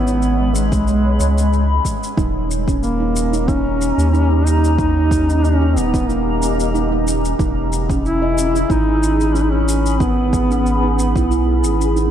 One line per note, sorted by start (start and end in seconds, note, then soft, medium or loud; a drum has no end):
0.00 0.73 G#1 medium
0.00 2.14 G#3 medium
0.00 0.56 B3 medium
0.00 2.14 C#4 medium
0.00 2.14 C#5 medium
0.00 2.14 B5 medium
0.07 shaker soft
0.22 shaker soft
0.54 1.85 G#3 medium
0.54 shaker medium
0.72 1.19 B1 medium
0.72 kick loud
0.72 shaker soft
0.88 shaker soft
1.20 1.80 C#2 medium
1.20 shaker medium
1.38 shaker soft
1.53 shaker soft
1.85 kick medium
1.85 shaker medium
2.03 shaker soft
2.17 3.92 D#1 medium
2.17 12.11 C#4 medium
2.17 2.28 D#4 medium
2.17 7.35 G4 medium
2.17 7.35 D#5 medium
2.17 7.35 A#5 medium
2.17 kick loud
2.17 shaker soft
2.51 shaker medium
2.68 2.82 C#4 medium
2.68 kick medium
2.68 shaker soft
2.82 3.49 A#3 medium
2.82 shaker soft
3.00 3.31 D#4 medium
3.16 shaker medium
3.33 3.47 D#4 medium
3.33 shaker soft
3.48 4.47 C#4 medium
3.48 3.58 D#4 medium
3.48 kick loud
3.48 shaker soft
3.81 shaker medium
3.98 5.78 D#2 medium
3.98 shaker soft
4.13 4.29 D#4 medium
4.13 shaker soft
4.31 4.77 D#4 medium
4.46 4.78 D#4 medium
4.46 shaker medium
4.64 shaker soft
4.78 5.46 D#4 loud
4.78 4.89 D#4 loud
4.78 kick loud
4.78 shaker soft
5.11 kick loud
5.11 shaker medium
5.29 5.43 C#4 medium
5.29 shaker soft
5.45 5.78 C#4 medium
5.45 shaker soft
5.62 5.92 D#4 medium
5.76 7.34 D#1 loud
5.76 6.11 B3 medium
5.76 shaker medium
5.94 6.08 D#4 medium
5.94 kick medium
5.94 shaker soft
6.09 7.07 A#3 medium
6.09 6.19 D#4 medium
6.09 shaker soft
6.42 shaker medium
6.60 shaker soft
6.74 6.90 D#4 medium
6.74 shaker soft
6.92 7.38 D#4 medium
7.07 shaker medium
7.25 shaker soft
7.39 8.65 E1 medium
7.39 7.50 D#4 medium
7.39 12.11 G#4 medium
7.39 12.11 B5 medium
7.39 kick loud
7.39 shaker soft
7.73 shaker medium
7.90 8.04 C#4 medium
7.90 kick medium
7.90 shaker soft
8.05 8.72 E4 loud
8.05 shaker soft
8.22 8.53 D#5 medium
8.38 shaker medium
8.55 8.69 E4 medium
8.55 shaker soft
8.70 11.17 G#1 medium
8.70 9.36 D#4 loud
8.70 8.80 E4 medium
8.70 kick loud
8.70 shaker soft
9.03 shaker medium
9.21 shaker soft
9.35 9.44 C#4 medium
9.35 9.51 D#4 medium
9.35 shaker soft
9.43 9.52 D#4 medium
9.51 10.02 C#4 medium
9.51 9.99 D#4 medium
9.68 shaker medium
9.86 shaker soft
10.00 11.96 B3 medium
10.00 10.10 D#4 medium
10.00 kick loud
10.00 shaker soft
10.33 kick medium
10.33 shaker medium
10.50 10.65 C#4 medium
10.50 shaker soft
10.66 shaker soft
10.83 11.14 D#4 medium
10.99 shaker medium
11.16 11.65 B1 medium
11.16 11.30 E4 medium
11.16 kick medium
11.16 shaker soft
11.31 11.41 E4 medium
11.31 shaker soft
11.63 12.11 G#1 medium
11.63 shaker medium
11.81 shaker soft
11.96 12.06 D#4 medium
11.96 shaker soft